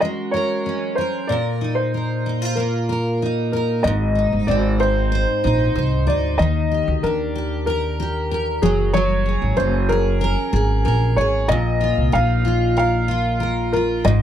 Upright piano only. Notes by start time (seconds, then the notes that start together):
0.00 D#5
0.31 C#5
0.95 C5
1.27 D5
1.75 C5
2.55 A#4
3.52 A#4
3.83 D#5
4.47 D5
4.80 C5
6.07 D5
6.38 D#5
7.03 A#4
7.66 A#4
8.62 G#4
8.93 C#5
9.57 C5
9.89 A#4
11.16 C#5
11.48 D#5
12.13 F5
12.78 F5
13.73 A#4
14.05 D#5